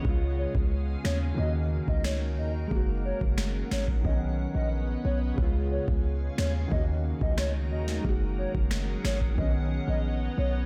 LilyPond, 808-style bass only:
\new Staff \with { instrumentName = "808-style bass" } { \clef bass \time 4/4 \key ees \minor \tempo 4 = 90 des,8. des,8. ees,8 ees,8. des,8. ees,8 | ges,,8. ges,,8. aes,,8 b,,8. bes,,8. b,,8 | des,8. des,8. ees,8 ees,8. des,8. ees,8 | ges,,8. ges,,8. aes,,8 b,,8. bes,,8. b,,8 | }